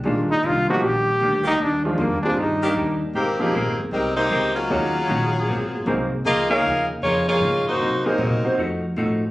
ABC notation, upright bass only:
X:1
M:4/4
L:1/8
Q:"Swing" 1/4=155
K:Eb
V:1 name="Upright bass" clef=bass
B,,, z C,, z B,,,2 D,,2 | E,,2 (3F,, E,, D,, G,,2 E,,2 | [K:Ab] A,,,2 (3B,,, A,,, G,,, C,,2 D,,2 | E,, z B,,,2 A,,, z C,,2 |
D,,2 E,,2 F,,2 A,, z | C, z B,, z F,,2 =A,,2 |]